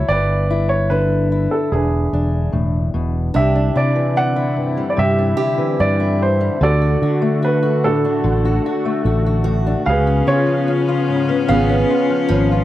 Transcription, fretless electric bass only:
0.09 G1
1.72 E1
2.13 E1
2.53 E1
2.94 E1
3.35 C2
3.76 C3
4.98 G2
5.80 G2
6.61 D2
7.02 D3
8.24 A1
9.05 A1
9.87 C#2
10.27 C#3
11.49 G#1
12.30 G#1

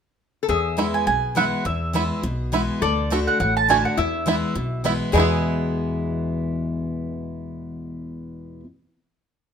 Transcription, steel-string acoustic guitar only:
0.49 E2
0.77 E3 G#3 B3 E4
1.07 B2
1.35 E3 G#3 B3 E4
1.65 E2
1.93 E3 G#3 B3 E4
2.23 B2
2.52 E3 G#3 B3 E4
2.82 D3
3.10 D3 A3 D4 F#4
3.40 A2
3.68 D3 A3 D4 F#4
3.98 E2
4.26 E3 G#3 B3 E4
4.55 B2
4.84 E3 G#3 B3 E4
5.12 E2 B2 E3 G#3 B3 E4

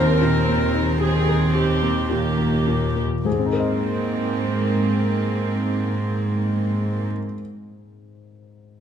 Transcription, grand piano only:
Already playing: D#2 A#3 C5
0.21 A#2
0.49 A#3
0.74 D#4
1.01 G4
1.28 A#4
1.55 G4
1.82 A#3
2.10 A#2
2.37 A#3
2.67 A#2
2.95 A#3
3.25 G#2 G#4
3.32 G#3
3.39 C4
3.46 D#4
3.53 A#4
3.60 D#5

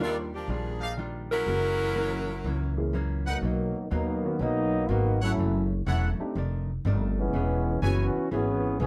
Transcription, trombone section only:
3.26 B2 D#3 F#3 A#3
3.91 D#3 F#3 A#3 B3
4.41 F#3 A#3 B3 D#4
4.90 D#3 A#3 B3 F#4
5.23 F#3 A3 C#4 E4
7.18 E3 G#3 B3 C#4
7.83 E3 B3 C#4 F#4
8.32 E3 B3 C#4 G#4
8.80 E3 B3 C#4 G#4

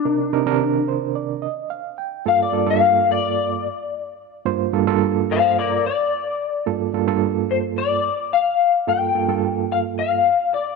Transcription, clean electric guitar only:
Already playing: D4
2.28 F5
2.42 D5
2.70 F5
3.12 D5
5.31 C5 F5
5.58 A#4 D5
5.86 D5
7.51 C5
7.78 D5
8.33 F5
8.89 G5
9.72 F5
9.99 F5
10.54 D5

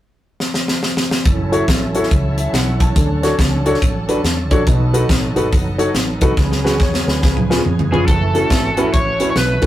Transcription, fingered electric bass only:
1.25 F#1
1.68 A1
2.11 C#2
2.53 B1
2.96 D2
3.39 C#2
3.82 A1
4.23 E2
4.51 A#1
4.67 B1
5.09 A1
5.36 G#1
5.53 F#1
5.94 A1
6.21 C2
6.37 C#2
6.80 E2
7.07 D2
7.23 C#2
7.65 F2
7.92 F1
8.08 F#1
8.51 G#1
8.94 A1
9.35 B1
9.62 C#2

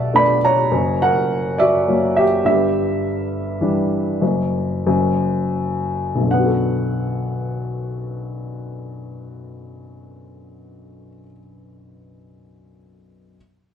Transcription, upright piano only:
Already playing: B1 B2 A4 D5 F#5 A5
0.13 A3 B3 D4 D5 B5
0.45 C#5 A#5
0.71 F#1 F#2
1.02 A#4 F#5
1.58 F#4 D5
1.87 F#3 A#3 C#4
2.17 G4 E5
2.45 G1 G2 G4 E5
3.61 E3 G3 D4
4.22 F#1 F#2
4.86 F#1 F#2
6.15 B1
6.21 F#2
6.27 D3
6.31 B3 F#5
6.39 F#4
6.46 A4

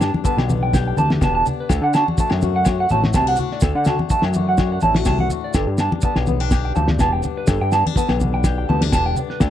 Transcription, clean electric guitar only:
0.01 A5
0.25 A5
0.63 G5
0.88 G5
0.98 A5
1.23 A5
1.35 A5
1.60 B4
1.72 A4
1.83 F#5
1.95 A5
2.20 A5
2.56 F#5
2.80 F#5
2.91 A5
3.16 A5
3.28 F#5
3.53 D5
3.63 A4
3.76 F#5
3.88 A5
4.11 A5
4.49 F#5
4.72 F#5
4.83 A5
5.07 A5
5.20 F#5
5.44 D5
5.55 A4
5.80 A5
6.05 A5
6.41 G5
6.65 G5
6.76 A5
7.00 A5
7.13 G5
7.37 B4
7.49 A4
7.61 G5
7.73 A5
7.97 A5
8.34 G5
8.58 G5
8.69 A5
8.93 A5
9.06 G5
9.30 B4
9.41 A4

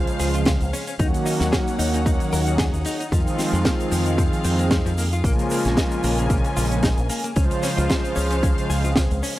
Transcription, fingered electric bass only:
0.20 C#2
0.62 C#2
1.00 D#2
1.41 D#2
1.79 D#2
2.33 D#2
2.74 D#2
3.12 F2
3.53 F2
3.92 F2
4.45 F2
4.86 F2
5.24 A#1
5.65 A#1
6.04 A#1
6.57 A#1
6.98 A#1
7.36 C#2
7.78 C#2
8.17 C#2
8.70 C#2
9.11 C#2

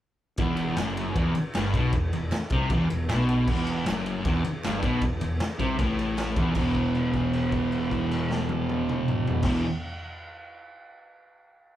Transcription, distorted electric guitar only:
0.39 E2
0.78 F#2
1.17 E2
1.36 muted distorted electric guitar stroke
1.55 G2
1.75 B2
1.93 E2
2.13 E2
2.31 muted distorted electric guitar stroke
2.52 C3
2.71 E2
2.90 E2
3.08 B2
3.48 E2
3.86 F#2
4.26 E2
4.45 muted distorted electric guitar stroke
4.64 G2
4.83 B2
5.03 E2
5.21 E2
5.40 muted distorted electric guitar stroke
5.59 C3
5.79 A2
6.37 E2
6.56 E2 B2 E3
9.44 E2 B2
9.48 E3

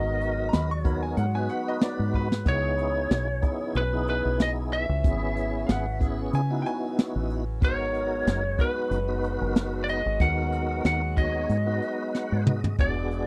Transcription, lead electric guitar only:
Already playing: D#5
0.81 C#5
2.48 C#5
3.77 B4
4.10 B4
4.42 D#5
4.73 E5
7.65 C#5
8.61 B4
9.43 A#4
9.84 D5
9.89 D#5
10.21 F#5
10.87 F#5
11.18 D#5
12.81 D5

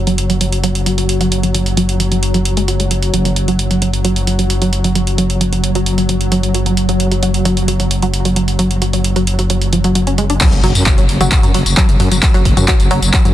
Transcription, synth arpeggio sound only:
0.07 F#3
0.30 F#3
0.41 F#3
0.64 F#3
0.86 F#3
0.98 F#3
1.21 F#3
1.43 F#3
1.54 F#3
1.77 F#3
2.00 F#3
2.12 F#3
2.34 F#3
2.57 G#3
2.68 F#4
2.80 G#3
2.91 F#3
3.14 F#3
3.25 F#3
3.48 F#3
3.71 F#3
3.82 F#3
4.05 F#3
4.27 F#3
4.39 F#3
4.62 F#3
4.84 F#3
4.95 F#3
5.18 F#3
5.41 F#3
5.53 F#3
5.75 F#3
5.98 F#3
6.09 F#3
6.32 F#3
6.55 F#3
6.66 F#3
6.89 F#3
7.12 F#3
7.23 F#3
7.45 F#3
7.68 F#3
7.80 F#3
8.03 F#3
8.25 F#3
8.36 F#3
8.59 F#3
8.82 F#3
8.93 F#3
9.16 F#3
9.39 F#3
9.50 F#3
9.73 F3
9.84 F#3
9.95 F#3
10.07 C#4
10.18 G#3
10.30 D4
10.41 F#3
10.64 F#3
10.86 F#3
10.98 F#3
11.21 F#3
11.43 F#3
11.54 F#3
11.77 F#3
12.00 F#3
12.12 F#3
12.34 F#3
12.57 F#3
12.68 F#3
12.91 F#3
13.14 F#3
13.25 F#3

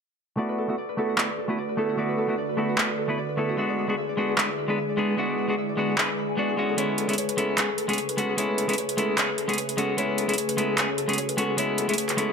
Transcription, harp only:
0.38 D5
0.49 B4
0.58 A4
0.69 F#4
0.78 D5
0.89 B4
0.98 A4
1.09 F#4
1.18 D5
1.29 B4
1.38 A4
1.49 F#4
1.58 D5
1.69 B4
1.78 A4
1.89 F#4
1.98 D5
2.09 B4
2.18 A4
2.29 F#4
2.38 D5
2.49 B4
2.58 A4
2.69 F#4
2.78 D5
2.89 B4
2.98 A4
3.09 F#4
3.18 D5
3.29 B4
3.38 A4
3.49 F#4
3.58 E5
3.69 D5
3.78 B4
3.89 G#4
3.98 E5
4.09 D5
4.18 B4
4.29 G#4
4.38 E5
4.49 D5
4.58 B4
4.69 G#4
4.78 E5
4.89 D5
4.98 B4
5.09 G#4
5.18 E5
5.29 D5
5.38 B4
5.49 G#4
5.58 E5
5.69 D5
5.78 B4
5.89 G#4
5.98 E5
6.09 D5
6.18 B5
6.29 G#5
6.38 D5
6.49 G#4
6.58 E5
6.69 A4
6.78 C#5
6.89 B4
6.98 A4
7.09 G#4
7.18 C#5
7.29 B4
7.38 A4
7.49 G#4
7.58 C#5
7.69 B4
7.78 A4
7.89 G#4
7.98 C#5
8.09 B4
8.18 A4
8.29 G#4
8.38 C#5
8.49 B4
8.58 A4
8.69 G#4
8.78 C#5
8.89 B4
8.98 A4
9.09 G#4
9.18 C#5
9.29 B4
9.38 A4
9.49 G#4
9.58 C#5
9.69 B4
9.78 A4
9.89 G#4
9.98 C#5
10.09 B4
10.18 A4
10.29 G#4
10.38 C#5
10.49 B4
10.58 A4
10.69 G#4
10.78 C#5
10.89 B4
10.98 A4
11.09 G#4
11.18 C#5
11.29 B4
11.38 A4
11.49 G#4
11.58 C#5
11.69 B4
11.78 A4
11.89 G#4
11.98 C#5
12.09 B4
12.18 A4
12.29 G#4

